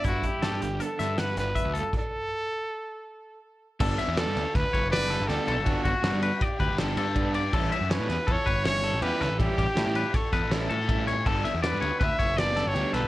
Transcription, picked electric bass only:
\new Staff \with { instrumentName = "Picked electric bass" } { \clef bass \time 5/4 \key g \lydian \tempo 4 = 161 g,,8 r8 g,16 g,16 g,,8 r8 g,4 g,,8 r16 d,8 r16 | r1 r4 | g,,8 r16 e,8 g,16 d,16 r16 d,16 r16 fis,,4~ fis,,16 g,,16 d,16 r16 b,,16 g,,16~ | g,,16 r16 g,,16 r16 g,16 g,8 r8. d,16 g,,8. g,4. |
a,,8 r16 fis,8 a,16 e,16 r16 e,16 r16 g,,4~ g,,16 a,,16 e,16 r16 cis,16 a,,16~ | a,,16 r16 a,,16 r16 a,16 a,8 r8. e,16 a,,8. a,4. | g,,8 r16 e,8 g,16 d,16 r16 d,16 r16 fis,,4~ fis,,16 g,,16 d,16 r16 b,,16 g,,16 | }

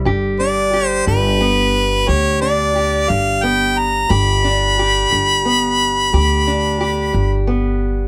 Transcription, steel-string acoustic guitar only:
\new Staff \with { instrumentName = "Steel-string acoustic guitar" } { \time 12/8 \key g \major \tempo 4. = 59 << { <g g'>8 d'8 g'4 b4 g'8 d'8 g'4 b4 | g'8 d'8 g'4 b4 g'8 d'8 g'4 b4 | } \\ { g,4 r8 g,4 r8 g,4 r8 g,4 r8 | g,4 r8 g,4 r8 g,4 r8 g,4 r8 | } >> }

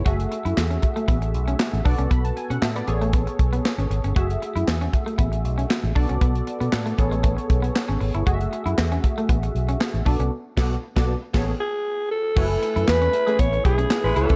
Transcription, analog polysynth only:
\new Staff \with { instrumentName = "Analog polysynth" } { \time 4/4 \key fis \minor \tempo 4 = 117 << { r1 | b''16 a''16 gis''16 fis''16 e''16 d''8 r2 r16 | r1 | r1 |
r1 | r1 | r1 | } \\ { <a fis' gis' e''>2.~ <a fis' gis' e''>8 <b fis' a' d''>8~ | <b fis' a' d''>4. <b gis' a' cis''>2~ <b gis' a' cis''>8 | <a fis' gis' e''>2.~ <a fis' gis' e''>8 <b fis' a' d''>8~ | <b fis' a' d''>4. <b gis' a' cis''>2~ <b gis' a' cis''>8 |
<a fis' gis' dis'' e''>2.~ <a fis' gis' dis'' e''>8 <b fis' a' d''>8 | r8 <b fis' a' d''>8 r16 <b fis' a' d''>8 r16 <b gis' a' cis''>8 r4. | <a e' b' gis''>1 | } >> }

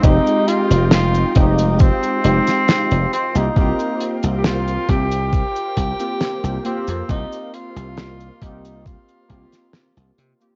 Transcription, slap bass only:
\new Staff \with { instrumentName = "Slap bass" } { \clef bass \time 4/4 \key c \phrygian \tempo 4 = 68 f,,16 r8 f,,8 r16 f,,8 r8 f,,16 r8 f,,16 r16 c,16 | c,16 r8 c,8 r16 c,8 r8 c,16 r8 c,16 r16 f,16 | c,16 r8 c,8 r16 c,8 r8 c,16 r8 c,16 c16 r16 | }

